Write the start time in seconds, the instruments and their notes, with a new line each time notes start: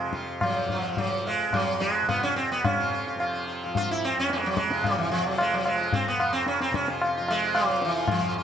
Already playing: tanpura F2 C3 F3
0.13 sitar F4, tabla ke
0.41 tanpura F3, sitar F#3 F4, tabla na, tabla ge
0.69 sitar F3 F4, tabla ge
0.97 tanpura F3, sitar F#3, tabla tin, tabla ge
1.25 sitar G#3 F4
1.50 tanpura F2, sitar F#3 F4, tabla na, tabla ge
1.80 sitar G#3, tabla te
2.02 tanpura C3
2.08 sitar B3 F4, tabla na, tabla ge
2.23 sitar C#4
2.36 sitar C4, tabla te
2.52 sitar B3
2.65 tanpura C3, sitar C#4, tabla na, tabla ge
2.80 sitar F4
2.93 sitar F4
3.07 sitar F4
3.15 tanpura F3
3.19 sitar F4, tabla na
3.33 sitar F4
3.47 sitar F4
3.63 tanpura F3, sitar F4
3.75 sitar F4, tabla tin, tabla ge
3.91 sitar E4
4.05 sitar C4
4.18 tanpura F2, sitar C#4
4.30 sitar G#3, tabla te
4.43 sitar F#3, tabla te
4.57 sitar G#3, tabla ke
4.69 tanpura C3, sitar F4, tabla te
4.84 sitar F#3, tabla na, tabla ge
4.98 sitar E3
5.11 sitar F3
5.18 tanpura F3
5.26 sitar F#3
5.38 sitar G#3, tabla na
5.54 sitar F#3
5.66 sitar G#3, tabla na
5.70 tanpura F3
5.81 sitar F4
5.92 sitar C4, tabla tin, tabla ge
6.08 sitar B3
6.19 tanpura F2, sitar F4, tabla na
6.33 sitar C4
6.46 sitar C#4, tabla te
6.61 sitar C4, tabla te
6.71 tanpura C3, tabla ke
6.75 sitar C#4
6.88 sitar F4, tabla te
7.01 sitar F4, tabla na
7.17 tanpura F3, sitar F4
7.28 sitar G#3, tabla na
7.44 sitar F4
7.55 sitar F#3, tabla na
7.70 tanpura F3, sitar F4
7.81 sitar E3, tabla te
7.98 sitar F4
8.08 sitar F3, tabla na, tabla ge
8.19 tanpura F2
8.25 sitar F4
8.38 sitar F4